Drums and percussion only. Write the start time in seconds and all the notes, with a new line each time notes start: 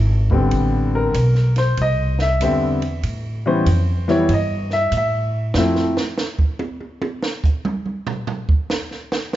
0.30 kick
0.51 kick, ride
1.14 kick, hi-hat pedal, ride
1.35 snare
1.56 snare, ride
1.77 kick, ride
2.19 snare
2.40 kick, hi-hat pedal, ride
2.82 ride
3.03 kick, ride
3.66 kick, hi-hat pedal, ride
4.08 snare
4.29 kick, ride
4.70 snare
4.92 kick, hi-hat pedal, ride
5.54 snare
5.75 snare
5.97 snare
6.18 snare, hi-hat pedal
6.39 kick
6.59 high tom
6.80 high tom
7.02 high tom
7.23 snare
7.44 kick, hi-hat pedal
7.65 mid tom
7.86 mid tom
8.07 floor tom
8.27 floor tom
8.49 kick
8.70 snare, hi-hat pedal
8.91 snare
9.12 snare